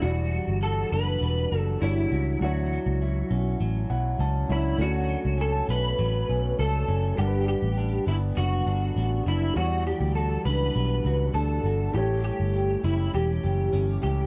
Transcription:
Already playing: B3 D4
0.00 E1 E3 G3 E4 F#4
0.05 D5
0.34 G3
0.48 G1
0.63 F#4 A4
0.92 F#1 D4 B4
1.21 E1 G3
1.52 F#1 F#4
1.58 A4
1.80 G1 G3 D4 E4 F#4 C#5
2.12 C#2 F#4
2.39 D2 F#3 D4 E4 F#4
2.44 C#5
2.73 F#3
2.86 C#2
3.02 E4
3.31 B1 C#4
3.60 A1 F#3
3.90 B1 E4 F#5
4.19 C#2 C#4 A5
4.49 C#2 F#3 D4 E4 C#5
4.78 D2 A3 C#4 D4 F#4
4.82 C#5
5.09 F#3
5.25 C#2
5.38 C#4 A4
5.69 B1 A3 B4
5.99 A1 F#3
6.29 B1 C#4
6.59 C#2 A3 A4
6.88 F#1 C#4
7.15 G1 G2 G3 D4 G4 F#5
7.21 A#4
7.27 B4
7.48 G4
7.62 A1
7.77 D4
8.07 G1 B3 E4
8.37 F#1 D3 F#4
8.66 G1 D4
8.96 A1 B3
9.26 F#1 D4 E4
9.54 E2 E3 G3 E4 F#4
9.58 F#4 C#5
9.65 D5
9.87 G3 G4
10.00 D2
10.15 F#4 A4
10.45 C#2 D4 B4
10.76 B1 G3
11.05 C#2 F#4
11.34 D2 D4 A4
11.64 G1 F#4
11.92 A1 A2 A3 E4 G4
11.98 C#5
12.23 G3 G4
12.40 G1
12.54 G4
12.84 F#1 C#4 E4
13.14 E1 E3 G4
13.43 F#1 G4
13.73 G1 C#4
14.02 C#2 G4

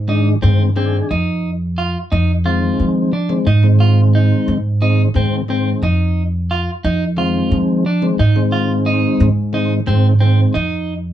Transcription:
Already playing: G#2
0.08 D#3 G#3 D4 D#4
0.42 G2 D#3 G#3 C4
0.76 D#3 C4 D4 G#4
1.11 F2 D#4
1.78 F4
2.12 F2 D#4
2.45 D#3 G#3 C4 F4
2.80 F3
3.13 D4
3.29 D#3 G#3 C4
3.47 G#2 D#4
3.63 D#3 G#3 C4
3.80 F4
4.15 D#4
4.48 G#2
4.81 D#3 G#3 C4 D#4
5.14 G#2 D#3 G#3 C4
5.48 D#3 G#3 C4
5.82 F2 D#4
6.51 F4
6.84 F2 D#4
7.17 D#3 G#3 C4 F4
7.51 F3
7.86 D4
8.02 D#3 G#3 C4
8.19 G#2 D#4
8.36 D#3 G#3 C4
8.52 F4
8.86 D#4
9.20 G#2
9.53 D#3 G#3 C4 D#4
9.87 G#2 D#3 G#3 C4
10.20 D#3 G#3 C4
10.54 F2 D#4

